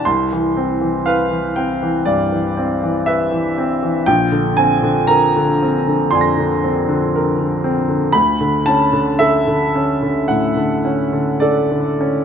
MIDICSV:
0, 0, Header, 1, 2, 480
1, 0, Start_track
1, 0, Tempo, 998336
1, 27, Time_signature, 4, 2, 24, 8
1, 1946, Tempo, 1022147
1, 3866, Tempo, 1069519
1, 4826, Tempo, 1149425
1, 5649, End_track
2, 0, Start_track
2, 0, Title_t, "Grand piano"
2, 0, Program_c, 0, 0
2, 0, Control_c, 0, 64, 127
2, 25, Note_on_c, 0, 84, 74
2, 30, Note_on_c, 0, 36, 41
2, 36, Control_c, 0, 64, 0
2, 122, Control_c, 0, 64, 127
2, 156, Note_on_c, 0, 52, 38
2, 273, Note_on_c, 0, 60, 41
2, 344, Note_off_c, 0, 52, 0
2, 391, Note_on_c, 0, 52, 37
2, 461, Note_off_c, 0, 60, 0
2, 505, Note_off_c, 0, 84, 0
2, 508, Note_on_c, 0, 77, 75
2, 515, Note_on_c, 0, 71, 43
2, 579, Note_off_c, 0, 52, 0
2, 629, Note_on_c, 0, 52, 31
2, 701, Note_off_c, 0, 71, 0
2, 747, Note_off_c, 0, 77, 0
2, 750, Note_on_c, 0, 79, 54
2, 757, Note_on_c, 0, 60, 37
2, 821, Note_off_c, 0, 52, 0
2, 878, Note_on_c, 0, 52, 38
2, 946, Note_off_c, 0, 60, 0
2, 971, Note_off_c, 0, 36, 0
2, 988, Note_on_c, 0, 74, 63
2, 991, Note_off_c, 0, 79, 0
2, 993, Note_on_c, 0, 43, 37
2, 1067, Note_off_c, 0, 52, 0
2, 1116, Note_on_c, 0, 52, 31
2, 1185, Note_off_c, 0, 43, 0
2, 1237, Note_on_c, 0, 60, 37
2, 1305, Note_off_c, 0, 52, 0
2, 1361, Note_on_c, 0, 52, 38
2, 1424, Note_off_c, 0, 60, 0
2, 1468, Note_off_c, 0, 74, 0
2, 1472, Note_on_c, 0, 76, 60
2, 1478, Note_on_c, 0, 71, 37
2, 1545, Note_off_c, 0, 52, 0
2, 1593, Note_on_c, 0, 52, 37
2, 1663, Note_off_c, 0, 71, 0
2, 1721, Note_on_c, 0, 60, 42
2, 1780, Note_off_c, 0, 52, 0
2, 1840, Note_on_c, 0, 52, 41
2, 1905, Note_off_c, 0, 60, 0
2, 1947, Note_off_c, 0, 76, 0
2, 1953, Note_off_c, 0, 52, 0
2, 1953, Control_c, 0, 64, 0
2, 1954, Note_on_c, 0, 79, 83
2, 1958, Note_on_c, 0, 34, 51
2, 2037, Control_c, 0, 64, 127
2, 2074, Note_on_c, 0, 50, 35
2, 2188, Note_off_c, 0, 79, 0
2, 2190, Note_on_c, 0, 80, 68
2, 2195, Note_on_c, 0, 60, 42
2, 2262, Note_off_c, 0, 50, 0
2, 2314, Note_on_c, 0, 50, 42
2, 2383, Note_off_c, 0, 60, 0
2, 2427, Note_on_c, 0, 82, 79
2, 2429, Note_off_c, 0, 80, 0
2, 2432, Note_on_c, 0, 70, 43
2, 2503, Note_off_c, 0, 50, 0
2, 2564, Note_on_c, 0, 50, 36
2, 2623, Note_off_c, 0, 70, 0
2, 2686, Note_on_c, 0, 60, 40
2, 2749, Note_off_c, 0, 50, 0
2, 2805, Note_on_c, 0, 50, 31
2, 2869, Note_off_c, 0, 60, 0
2, 2896, Note_off_c, 0, 34, 0
2, 2909, Note_off_c, 0, 82, 0
2, 2913, Note_on_c, 0, 84, 75
2, 2916, Note_on_c, 0, 74, 29
2, 2917, Note_on_c, 0, 41, 32
2, 2932, Note_on_c, 0, 80, 25
2, 2962, Note_on_c, 0, 94, 29
2, 2989, Note_off_c, 0, 50, 0
2, 3041, Note_on_c, 0, 50, 37
2, 3104, Note_off_c, 0, 41, 0
2, 3163, Note_on_c, 0, 60, 40
2, 3227, Note_off_c, 0, 50, 0
2, 3278, Note_on_c, 0, 50, 41
2, 3348, Note_off_c, 0, 60, 0
2, 3391, Note_off_c, 0, 84, 0
2, 3406, Note_on_c, 0, 70, 39
2, 3466, Note_off_c, 0, 50, 0
2, 3516, Note_on_c, 0, 50, 37
2, 3589, Note_off_c, 0, 70, 0
2, 3634, Note_on_c, 0, 60, 45
2, 3702, Note_off_c, 0, 50, 0
2, 3750, Note_on_c, 0, 50, 33
2, 3820, Note_off_c, 0, 60, 0
2, 3850, Note_off_c, 0, 74, 0
2, 3858, Note_off_c, 0, 80, 0
2, 3861, Note_on_c, 0, 83, 83
2, 3867, Note_off_c, 0, 50, 0
2, 3869, Note_on_c, 0, 38, 50
2, 3872, Note_off_c, 0, 94, 0
2, 3874, Control_c, 0, 64, 0
2, 3952, Control_c, 0, 64, 127
2, 3987, Note_on_c, 0, 50, 36
2, 4095, Note_off_c, 0, 83, 0
2, 4100, Note_on_c, 0, 81, 72
2, 4109, Note_on_c, 0, 61, 44
2, 4172, Note_off_c, 0, 50, 0
2, 4222, Note_on_c, 0, 50, 38
2, 4294, Note_off_c, 0, 61, 0
2, 4338, Note_off_c, 0, 81, 0
2, 4338, Note_on_c, 0, 76, 76
2, 4344, Note_on_c, 0, 69, 44
2, 4412, Note_off_c, 0, 50, 0
2, 4466, Note_on_c, 0, 50, 35
2, 4534, Note_off_c, 0, 69, 0
2, 4593, Note_on_c, 0, 61, 39
2, 4657, Note_off_c, 0, 50, 0
2, 4713, Note_on_c, 0, 50, 31
2, 4782, Note_off_c, 0, 61, 0
2, 4809, Note_off_c, 0, 38, 0
2, 4826, Note_off_c, 0, 76, 0
2, 4828, Note_on_c, 0, 78, 58
2, 4834, Note_on_c, 0, 45, 34
2, 4900, Note_off_c, 0, 50, 0
2, 4948, Note_on_c, 0, 50, 33
2, 5017, Note_off_c, 0, 45, 0
2, 5065, Note_on_c, 0, 61, 37
2, 5136, Note_off_c, 0, 50, 0
2, 5182, Note_on_c, 0, 50, 33
2, 5256, Note_off_c, 0, 61, 0
2, 5295, Note_on_c, 0, 74, 60
2, 5303, Note_off_c, 0, 78, 0
2, 5303, Note_on_c, 0, 69, 40
2, 5375, Note_off_c, 0, 50, 0
2, 5427, Note_on_c, 0, 50, 30
2, 5496, Note_off_c, 0, 69, 0
2, 5549, Note_on_c, 0, 61, 39
2, 5619, Note_off_c, 0, 50, 0
2, 5649, Note_off_c, 0, 61, 0
2, 5649, Note_off_c, 0, 74, 0
2, 5649, End_track
0, 0, End_of_file